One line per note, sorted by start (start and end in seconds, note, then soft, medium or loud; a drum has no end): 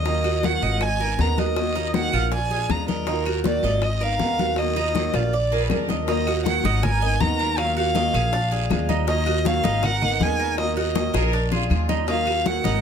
0.00 0.56 D#2 medium
0.00 0.47 D#5 loud
0.05 0.23 D#3 medium
0.05 0.24 F#3 medium
0.05 0.24 A#3 medium
0.05 0.24 D#4 medium
0.05 0.23 F4 medium
0.05 high bongo medium
0.05 high conga soft
0.05 long guiro medium
0.24 0.42 F#3 soft
0.24 0.43 A#3 soft
0.24 0.42 F4 soft
0.24 0.61 F#4 medium
0.24 high bongo soft
0.24 high conga soft
0.24 claves medium
0.43 0.61 D#3 medium
0.43 0.62 F#3 medium
0.43 0.62 A#3 medium
0.43 0.61 F4 medium
0.43 0.84 F#5 loud
0.43 high bongo medium
0.43 high conga loud
0.43 short guiro medium
0.62 1.15 G#1 medium
0.62 0.81 F#3 soft
0.62 0.81 A#3 soft
0.62 0.81 F4 soft
0.62 0.99 D#5 medium
0.62 high conga soft
0.62 short guiro medium
0.81 1.22 G#5 loud
0.81 muted steel-string acoustic guitar stroke medium
0.81 high bongo medium
0.81 high conga soft
0.81 long guiro medium
0.81 claves medium
1.00 1.19 B3 soft
1.00 1.19 D#4 soft
1.00 1.18 A#4 soft
1.00 1.37 A#4 medium
1.00 high bongo soft
1.00 high conga soft
1.19 2.07 D#2 medium
1.19 1.55 D#3 medium
1.19 1.56 G#3 medium
1.19 1.56 B3 medium
1.19 1.57 D#4 medium
1.19 1.57 A#4 medium
1.19 1.40 A#5 medium
1.19 high bongo soft
1.19 low bongo medium
1.19 high conga soft
1.19 short guiro medium
1.38 1.74 F#4 medium
1.38 1.95 D#5 loud
1.38 high bongo soft
1.38 high conga medium
1.38 short guiro medium
1.56 1.75 D#3 medium
1.56 1.75 F#3 medium
1.56 1.75 A#3 medium
1.56 1.75 F4 medium
1.56 high bongo medium
1.56 high conga soft
1.56 long guiro medium
1.56 claves medium
1.75 1.94 F#3 soft
1.75 1.94 A#3 soft
1.75 2.12 D#4 medium
1.75 1.94 F4 soft
1.75 high bongo soft
1.75 high conga soft
1.94 2.12 D#3 medium
1.94 2.13 F#3 medium
1.94 2.13 A#3 medium
1.94 2.12 F4 medium
1.94 2.30 F#5 loud
1.94 high bongo medium
1.94 high conga medium
1.94 short guiro medium
2.13 2.66 A#1 medium
2.13 2.32 F#3 soft
2.13 2.32 A#3 soft
2.13 2.31 F4 soft
2.13 2.32 F4 medium
2.13 short guiro medium
2.13 claves medium
2.32 2.50 D5 medium
2.32 2.72 G#5 loud
2.32 muted steel-string acoustic guitar stroke medium
2.32 high bongo medium
2.32 high conga soft
2.32 long guiro medium
2.50 2.70 G#3 soft
2.50 2.70 D4 soft
2.50 2.69 F4 soft
2.50 2.87 G#4 medium
2.50 high bongo soft
2.50 high conga soft
2.69 3.58 D#2 medium
2.69 3.07 F3 medium
2.69 3.07 G#3 medium
2.69 3.07 D4 medium
2.69 3.07 F4 medium
2.69 2.89 A#5 loud
2.69 high bongo soft
2.69 low bongo medium
2.69 high conga medium
2.69 short guiro medium
2.69 claves medium
2.88 3.41 A#4 medium
2.88 3.07 D#5 medium
2.88 high bongo soft
2.88 high conga medium
2.88 short guiro medium
3.07 3.25 D#3 medium
3.07 3.26 F#3 medium
3.07 3.26 A#3 medium
3.07 3.25 D#4 medium
3.07 3.25 F4 medium
3.07 high bongo medium
3.07 high conga soft
3.07 long guiro medium
3.25 3.43 F#3 soft
3.25 3.44 A#3 soft
3.25 3.44 F4 soft
3.25 3.63 F#4 medium
3.25 high bongo soft
3.25 high conga soft
3.25 claves medium
3.44 3.63 D#3 medium
3.44 3.63 F#3 medium
3.44 3.62 A#3 medium
3.44 3.61 F4 medium
3.44 3.86 D5 medium
3.44 high bongo medium
3.44 high conga medium
3.44 short guiro medium
3.63 4.16 G#1 medium
3.63 3.82 F#3 soft
3.63 3.82 A#3 soft
3.63 3.81 F4 soft
3.63 4.00 D#5 medium
3.63 high conga soft
3.63 short guiro medium
3.82 4.04 D#5 medium
3.82 muted steel-string acoustic guitar stroke medium
3.82 high bongo medium
3.82 high conga soft
3.82 long guiro medium
3.82 claves medium
4.01 4.19 B3 soft
4.01 4.20 D#4 soft
4.01 4.38 A#4 medium
4.01 4.19 A#4 soft
4.01 4.60 F5 loud
4.01 high bongo soft
4.01 high conga soft
4.19 5.08 D#2 medium
4.19 4.56 D#3 medium
4.19 4.57 G#3 medium
4.19 4.57 B3 medium
4.19 4.57 D#4 medium
4.19 4.57 A#4 medium
4.19 high bongo soft
4.19 low bongo medium
4.19 high conga soft
4.19 short guiro medium
4.38 4.76 F#4 medium
4.38 high bongo soft
4.38 high conga medium
4.38 short guiro medium
4.56 4.76 D#3 medium
4.56 4.76 F#3 medium
4.56 4.76 A#3 medium
4.56 4.75 F4 medium
4.56 5.17 D#5 loud
4.56 high bongo medium
4.56 high conga soft
4.56 long guiro medium
4.56 claves medium
4.76 4.95 F#3 soft
4.76 4.95 A#3 soft
4.76 5.13 D#4 medium
4.76 4.94 F4 medium
4.76 high bongo soft
4.76 high conga soft
4.95 5.13 D#3 medium
4.95 5.14 F#3 medium
4.95 5.13 A#3 medium
4.95 5.12 F4 medium
4.95 high bongo medium
4.95 high conga medium
4.95 short guiro medium
5.13 5.66 A#1 medium
5.13 5.32 F#3 soft
5.13 5.32 A#3 soft
5.13 5.32 F4 soft
5.13 5.33 F4 medium
5.13 5.90 D5 medium
5.13 high bongo loud
5.13 high conga soft
5.13 short guiro medium
5.13 claves medium
5.33 5.51 D5 medium
5.33 muted steel-string acoustic guitar stroke medium
5.33 high conga soft
5.33 long guiro medium
5.51 5.69 G#3 soft
5.51 5.70 D4 soft
5.51 5.69 F4 soft
5.51 5.88 G#4 medium
5.51 5.60 A#4 loud
5.51 high conga soft
5.61 5.70 B4 medium
5.70 6.58 D#2 medium
5.70 6.07 F3 medium
5.70 6.07 G#3 medium
5.70 6.08 D4 medium
5.70 6.07 F4 medium
5.70 6.05 A#4 medium
5.70 low bongo medium
5.70 high conga medium
5.70 short guiro medium
5.70 claves medium
5.89 6.08 D#5 medium
5.89 low bongo medium
5.89 high conga medium
5.89 short guiro medium
6.07 6.26 D#3 medium
6.07 6.26 F#3 medium
6.07 6.26 A#3 medium
6.07 6.27 D#4 medium
6.07 6.25 F4 medium
6.07 6.43 D#5 loud
6.07 high bongo medium
6.07 high conga soft
6.07 long guiro medium
6.26 6.44 F#3 soft
6.26 6.44 A#3 soft
6.26 6.44 F4 soft
6.26 6.64 F#4 medium
6.26 high bongo soft
6.26 high conga soft
6.26 claves medium
6.45 6.63 D#3 medium
6.45 6.63 F#3 medium
6.45 6.63 A#3 medium
6.45 6.62 F4 medium
6.45 6.84 F#5 loud
6.45 high bongo medium
6.45 high conga loud
6.45 short guiro medium
6.63 7.16 G#1 loud
6.63 6.82 F#3 soft
6.63 6.82 A#3 soft
6.63 6.83 D#4 medium
6.63 6.82 F4 medium
6.63 high conga loud
6.63 short guiro medium
6.82 7.02 A#4 medium
6.82 7.22 G#5 loud
6.82 muted steel-string acoustic guitar stroke medium
6.82 high bongo medium
6.82 high conga soft
6.82 low conga medium
6.82 long guiro medium
6.82 claves medium
7.02 7.20 B3 soft
7.02 7.20 D#4 soft
7.02 7.20 A#4 medium
7.02 7.38 D#5 medium
7.02 high conga soft
7.20 8.08 D#2 medium
7.20 7.57 D#3 medium
7.20 7.57 G#3 medium
7.20 7.58 B3 medium
7.20 7.58 D#4 medium
7.20 7.58 A#4 medium
7.20 7.60 A#5 loud
7.20 high bongo soft
7.20 low bongo medium
7.20 high conga medium
7.20 short guiro medium
7.39 7.76 A#4 medium
7.39 high bongo soft
7.39 high conga soft
7.39 short guiro medium
7.58 7.76 D#3 medium
7.58 7.76 F#3 medium
7.58 7.76 A#3 medium
7.58 7.75 F4 medium
7.58 7.77 F5 loud
7.58 high bongo medium
7.58 high conga soft
7.58 long guiro medium
7.58 claves medium
7.76 7.95 F#3 soft
7.76 7.95 A#3 soft
7.76 7.95 F4 medium
7.76 7.95 F#4 medium
7.76 8.86 F5 loud
7.76 high bongo soft
7.76 high conga soft
7.95 8.13 D#3 medium
7.95 8.14 F#3 medium
7.95 8.13 A#3 medium
7.95 8.12 F4 medium
7.95 8.14 D#5 medium
7.95 high bongo medium
7.95 high conga loud
7.95 short guiro medium
8.14 8.66 A#1 loud
8.14 8.32 F#3 soft
8.14 8.32 A#3 soft
8.14 8.32 F4 soft
8.14 8.33 G#4 medium
8.14 high bongo soft
8.14 high conga soft
8.14 short guiro medium
8.14 claves medium
8.33 8.51 D4 medium
8.33 muted steel-string acoustic guitar stroke medium
8.33 high bongo medium
8.33 high conga soft
8.33 long guiro medium
8.51 8.69 G#3 soft
8.51 8.69 D4 soft
8.51 8.70 F4 soft
8.51 8.88 G#4 medium
8.51 high conga soft
8.70 9.58 D#2 medium
8.70 9.07 F3 medium
8.70 9.07 G#3 medium
8.70 9.07 D4 medium
8.70 9.08 F4 medium
8.70 high bongo soft
8.70 low bongo medium
8.70 high conga medium
8.70 short guiro medium
8.70 claves medium
8.89 9.06 D#4 medium
8.89 high bongo soft
8.89 high conga medium
8.89 short guiro medium
9.07 9.26 D#3 medium
9.07 9.26 F#3 medium
9.07 9.26 A#3 medium
9.07 9.26 D#4 medium
9.07 9.25 F4 medium
9.07 9.48 D#5 loud
9.07 high bongo medium
9.07 high conga soft
9.07 long guiro medium
9.26 9.45 F#3 soft
9.26 9.45 A#3 soft
9.26 9.45 F4 medium
9.26 9.63 F#4 medium
9.26 high bongo soft
9.26 high conga soft
9.26 claves medium
9.45 9.63 D#3 medium
9.45 9.64 F#3 medium
9.45 9.64 A#3 medium
9.45 9.63 F4 medium
9.45 9.87 F5 loud
9.45 high bongo medium
9.45 high conga loud
9.45 short guiro medium
9.64 10.16 G#1 medium
9.64 9.83 F#3 soft
9.64 9.83 A#3 soft
9.64 9.82 D#4 medium
9.64 9.82 F4 medium
9.64 high bongo soft
9.64 high conga loud
9.64 short guiro medium
9.83 10.01 A#4 medium
9.83 10.24 F#5 loud
9.83 muted steel-string acoustic guitar stroke medium
9.83 high bongo medium
9.83 high conga soft
9.83 low conga medium
9.83 long guiro medium
9.83 claves medium
10.02 10.21 B3 soft
10.02 10.20 D#4 soft
10.02 10.20 A#4 soft
10.02 10.38 D#5 medium
10.02 high conga soft
10.02 low conga medium
10.20 11.08 D#2 medium
10.20 10.57 D#3 medium
10.20 10.58 G#3 medium
10.20 10.58 B3 medium
10.20 10.58 D#4 medium
10.20 10.58 A#4 medium
10.20 10.59 G#5 loud
10.20 high bongo soft
10.20 low bongo medium
10.20 high conga medium
10.20 short guiro medium
10.39 10.76 A#4 medium
10.39 high bongo soft
10.39 high conga soft
10.39 short guiro medium
10.58 10.76 D#3 medium
10.58 10.77 F#3 medium
10.58 10.76 A#3 medium
10.58 10.75 F4 medium
10.58 10.76 D#5 loud
10.58 high bongo medium
10.58 high conga soft
10.58 long guiro medium
10.58 claves medium
10.76 10.94 F#3 soft
10.76 10.95 A#3 soft
10.76 10.95 F4 soft
10.76 10.95 F#4 medium
10.76 11.30 D#5 medium
10.76 high bongo soft
10.76 high conga soft
10.95 11.13 D#3 medium
10.95 11.14 F#3 medium
10.95 11.14 A#3 medium
10.95 11.13 F4 medium
10.95 11.14 D#5 medium
10.95 high bongo loud
10.95 high conga loud
10.95 short guiro medium
11.14 11.66 A#1 loud
11.14 11.33 F#3 soft
11.14 11.33 A#3 soft
11.14 11.32 F4 soft
11.14 11.32 G#4 medium
11.14 11.49 A#4 loud
11.14 high bongo medium
11.14 high conga soft
11.14 short guiro medium
11.14 claves medium
11.33 11.51 D4 medium
11.33 muted steel-string acoustic guitar stroke medium
11.33 high conga soft
11.33 long guiro medium
11.52 11.69 G#3 soft
11.52 11.70 D4 soft
11.52 11.69 F4 medium
11.52 11.70 F4 medium
11.52 11.88 G#4 medium
11.52 low bongo medium
11.52 high conga soft
11.70 12.58 D#2 loud
11.70 12.07 F3 medium
11.70 12.07 G#3 medium
11.70 12.08 D4 medium
11.70 11.97 F4 medium
11.70 12.07 F4 medium
11.70 high conga medium
11.70 short guiro medium
11.70 claves medium
11.89 12.07 D#4 medium
11.89 low bongo medium
11.89 high conga medium
11.89 short guiro medium
12.07 12.25 D#3 medium
12.07 12.26 F#3 medium
12.07 12.26 A#3 medium
12.07 12.26 D#4 medium
12.07 12.25 F4 medium
12.07 12.48 F5 loud
12.07 high bongo medium
12.07 high conga soft
12.07 long guiro medium
12.26 12.44 F#3 soft
12.26 12.45 A#3 medium
12.26 12.44 F4 medium
12.26 12.63 F#4 medium
12.26 high bongo soft
12.26 high conga soft
12.26 claves medium
12.45 12.63 D#3 medium
12.45 12.64 F#3 medium
12.45 12.63 A#3 medium
12.45 12.63 F4 medium
12.45 12.81 F#5 loud
12.45 high bongo medium
12.45 high conga loud
12.45 short guiro medium
12.64 12.81 G#1 medium
12.64 12.81 F#3 soft
12.64 12.81 A#3 soft
12.64 12.81 D#4 medium
12.64 12.81 F4 soft
12.64 high bongo soft
12.64 high conga loud
12.64 short guiro medium